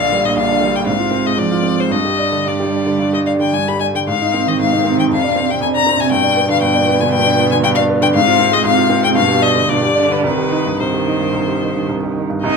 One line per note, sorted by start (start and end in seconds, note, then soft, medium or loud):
0.00 0.35 A#1 medium
0.00 0.35 D3 medium
0.00 0.19 D4 soft
0.00 0.26 F5 medium
0.12 0.32 G3 soft
0.25 0.45 A#2 soft
0.25 0.37 D#5 medium
0.36 0.86 A#1 soft
0.36 0.87 D3 soft
0.36 0.77 F5 medium
0.49 0.69 D4 soft
0.61 0.82 G3 soft
0.74 0.87 A#2 soft
0.74 0.87 G5 medium
0.86 1.36 G#2 soft
0.86 1.39 C3 soft
0.86 1.28 F5 medium
0.99 1.20 F4 soft
1.11 1.33 C4 soft
1.24 1.46 G#3 soft
1.24 1.40 D#5 medium
1.37 1.90 G#2 soft
1.37 1.91 F3 soft
1.37 1.81 D5 medium
1.51 1.73 F4 soft
1.63 1.86 C4 soft
1.77 1.91 G#3 soft
1.77 1.93 C5 medium
1.90 2.45 G2 soft
1.90 3.83 G3 soft
1.90 2.49 D#5 medium
2.05 2.27 G4 soft
2.18 2.41 D4 soft
2.32 2.54 D3 soft
2.46 2.98 G2 soft
2.46 3.13 D5 medium
2.60 2.81 G4 soft
2.72 2.94 D4 soft
2.86 3.08 D3 soft
2.99 3.52 G2 soft
3.13 3.35 G4 soft
3.13 3.19 D#5 medium
3.26 3.48 D4 soft
3.26 3.32 F5 medium
3.39 3.61 D3 soft
3.39 3.55 G5 medium
3.53 4.06 G2 soft
3.53 3.70 G#5 medium
3.68 3.90 G4 soft
3.68 3.80 B5 medium
3.80 4.02 D4 soft
3.80 3.86 G#5 medium
3.94 4.07 D3 soft
3.94 4.00 G5 medium
4.07 4.58 G#2 soft
4.07 6.13 C3 soft
4.07 4.49 F5 medium
4.21 4.42 D#4 soft
4.34 4.54 C4 soft
4.47 4.67 D#3 soft
4.47 4.60 D#5 medium
4.59 5.09 G#2 soft
4.59 4.98 F5 medium
4.72 4.93 D#4 soft
4.84 5.05 C4 soft
4.98 5.11 D#3 soft
4.98 5.04 G5 medium
5.09 5.59 F2 soft
5.09 5.52 F5 medium
5.23 5.44 D4 soft
5.36 5.56 C4 soft
5.49 5.69 C3 soft
5.49 5.61 G5 medium
5.61 6.10 F2 soft
5.61 5.67 G#5 medium
5.74 5.94 D4 soft
5.74 6.02 A#5 medium
5.86 6.06 C4 soft
5.97 6.11 C3 soft
5.97 6.11 G#5 medium
6.11 6.60 G2 soft
6.11 8.14 B2 medium
6.11 6.49 G5 medium
6.23 6.44 D4 soft
6.36 6.57 B3 soft
6.48 6.69 D3 soft
6.48 6.61 F5 medium
6.62 7.11 G2 medium
6.62 7.02 G5 medium
6.75 6.95 D4 soft
6.87 7.07 B3 soft
7.00 7.20 D3 soft
7.00 7.12 G#5 medium
7.13 7.62 G2 soft
7.13 7.50 G5 medium
7.26 7.46 D4 medium
7.38 7.58 B3 soft
7.51 7.71 D3 soft
7.51 7.56 G#5 medium
7.63 8.12 G2 medium
7.63 7.69 G5 medium
7.75 7.97 D4 medium
7.75 7.83 F5 medium
7.89 8.09 B3 soft
8.01 8.14 D3 medium
8.01 8.07 G5 medium
8.14 8.62 G#2 medium
8.14 8.61 C3 medium
8.14 8.54 F5 medium
8.27 8.47 F4 medium
8.39 8.59 C4 medium
8.51 8.72 G#3 medium
8.51 8.65 D#5 medium
8.64 9.14 G#2 medium
8.64 9.17 C3 medium
8.64 9.02 F5 medium
8.76 8.97 F4 soft
8.90 9.10 C4 medium
9.03 9.16 G#3 soft
9.03 9.09 G5 medium
9.15 9.67 G2 medium
9.15 9.68 B2 medium
9.15 9.44 F5 medium
9.28 9.50 G4 soft
9.42 9.63 D4 soft
9.42 9.71 D#5 medium
9.55 9.77 D3 soft
9.69 10.22 G2 soft
9.69 9.95 B2 medium
9.69 10.14 D5 medium
9.82 10.04 G4 soft
9.95 10.25 D3 medium
9.95 10.18 D4 soft
10.10 10.24 D3 soft
10.10 10.24 B4 medium
10.24 10.79 C2 medium
10.24 10.79 D#3 soft
10.24 10.81 B4 medium
10.38 10.60 G4 soft
10.52 10.74 D#4 soft
10.66 10.88 G2 soft
10.80 11.31 C2 soft
10.80 12.21 D#3 soft
10.80 11.89 C5 medium
10.93 11.15 G4 soft
11.07 11.29 D#4 soft
11.20 11.42 G2 soft
11.33 11.87 C2 soft
11.47 11.69 G4 soft
11.61 11.83 D#4 soft
11.75 11.97 G2 soft
11.88 12.42 C2 soft
12.03 12.25 G4 soft
12.16 12.38 D#4 soft
12.30 12.44 G2 soft
12.43 12.57 C2 medium
12.43 12.57 D#4 medium
12.43 12.57 D#5 medium